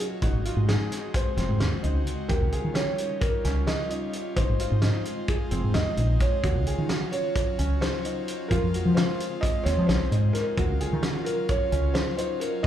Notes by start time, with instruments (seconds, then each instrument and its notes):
Already playing: analog synth pad F#3 C#4 F4
0.22 fretless electric bass G#1, analog synth pad G#3 C4 D#4, grand piano D#4, felt piano F#4, kick, closed hi-hat
0.33 fretless electric bass G#1
0.45 grand piano F4, closed hi-hat
0.56 fretless electric bass G#2
0.67 analog synth pad G#3 C4 F#4, grand piano D#4, felt piano G#4, snare, closed hi-hat
0.92 snare, closed hi-hat
1.13 analog synth pad G#3 C4 F4, felt piano C5, kick, closed hi-hat
1.37 fretless electric bass F1, grand piano C4, snare, closed hi-hat
1.49 fretless electric bass G#2, analog synth pad G#3 C4 F#4
1.60 fretless electric bass D#2, snare, closed hi-hat
1.83 fretless electric bass C#2, grand piano D#4, closed hi-hat
1.95 analog synth pad G#3 C4 F#4
2.07 closed hi-hat
2.28 fretless electric bass D#2, analog synth pad G3 C#4 F4, grand piano G4, felt piano A#4, kick, closed hi-hat
2.41 fretless electric bass C#2
2.52 grand piano G#4, closed hi-hat
2.64 fretless electric bass D#3
2.74 analog synth pad G3 C#4 D#4, grand piano G4, felt piano C#5, snare, closed hi-hat
2.98 closed hi-hat
3.21 analog synth pad G3 C#4 F4, felt piano A#4, kick, closed hi-hat
3.45 fretless electric bass C#2, grand piano C#4, snare, closed hi-hat
3.56 analog synth pad G3 C#4 F4
3.67 felt piano D#5, snare, closed hi-hat
3.90 grand piano D#4, closed hi-hat
4.01 analog synth pad G3 C#4 F4
4.13 closed hi-hat
4.35 fretless electric bass G#1, analog synth pad G#3 C4 D#4, grand piano D#4, felt piano C5, kick, closed hi-hat
4.48 fretless electric bass G#1
4.59 grand piano F4, closed hi-hat
4.71 fretless electric bass G#2
4.82 analog synth pad G#3 C4 F4, grand piano D#4, snare, closed hi-hat
5.05 closed hi-hat
5.28 analog synth pad G#3 C4 F4, felt piano G#4, kick, closed hi-hat
5.51 fretless electric bass F1, grand piano C4, closed hi-hat
5.62 fretless electric bass G#2, analog synth pad G#3 C4 D#4
5.74 fretless electric bass D#2, felt piano D#5, snare, closed hi-hat
5.97 fretless electric bass A#1, grand piano D#4, closed hi-hat
6.08 analog synth pad G#3 C4 F4
6.20 felt piano C#5, kick, closed hi-hat
6.43 fretless electric bass D#2, analog synth pad F#3 C#4 F4, grand piano F#4, kick, closed hi-hat
6.55 fretless electric bass C#2
6.66 grand piano G#4, closed hi-hat
6.78 fretless electric bass D#3
6.89 analog synth pad F#3 C#4 F4, grand piano F#4, snare, closed hi-hat
7.12 felt piano C#5, closed hi-hat
7.35 analog synth pad F#3 C#4 F#4, kick, closed hi-hat
7.59 fretless electric bass C#2, grand piano C#4, closed hi-hat
7.69 analog synth pad F#3 C#4 F4
7.81 felt piano C5, snare, closed hi-hat
8.04 grand piano D#4, closed hi-hat
8.15 analog synth pad F#3 C#4 F4
8.28 closed hi-hat
8.48 fretless electric bass F2, analog synth pad G#3 C4 F4, grand piano F4, felt piano A#4, kick, closed hi-hat
8.61 fretless electric bass F2
8.74 grand piano F#4, closed hi-hat
8.85 fretless electric bass F3
8.94 analog synth pad G#3 C4 F4, grand piano F4, felt piano C5, snare, closed hi-hat
9.20 closed hi-hat
9.41 analog synth pad G#3 C4 F4, felt piano D#5, kick, closed hi-hat
9.63 fretless electric bass D#2, grand piano C4, felt piano C#5, snare, closed hi-hat
9.76 fretless electric bass F3, analog synth pad G#3 C4 D#4
9.87 fretless electric bass C2, felt piano C5, snare, closed hi-hat
10.11 fretless electric bass G#2, grand piano D#4, closed hi-hat
10.22 analog synth pad G#3 C4 F4
10.33 felt piano A#4, snare, closed hi-hat
10.57 fretless electric bass D#2, analog synth pad F#3 C#4 F4, grand piano F#4, kick, closed hi-hat
10.69 fretless electric bass C#2
10.80 grand piano G#4, closed hi-hat
10.93 fretless electric bass D#3
11.03 analog synth pad F#3 C#4 F4, grand piano F#4, snare, closed hi-hat
11.25 felt piano A#4, closed hi-hat
11.49 analog synth pad F#3 C#4 F4, felt piano C#5, kick, closed hi-hat
11.72 fretless electric bass C#2, grand piano C#4, closed hi-hat
11.84 analog synth pad F#3 C#4 F4
11.94 felt piano C5, snare, closed hi-hat
12.17 grand piano D#4, felt piano C5, closed hi-hat
12.28 analog synth pad F#3 C#4 F4
12.40 felt piano A#4, closed hi-hat
12.63 analog synth pad F#3 A#3, grand piano F#4, felt piano D#5, snare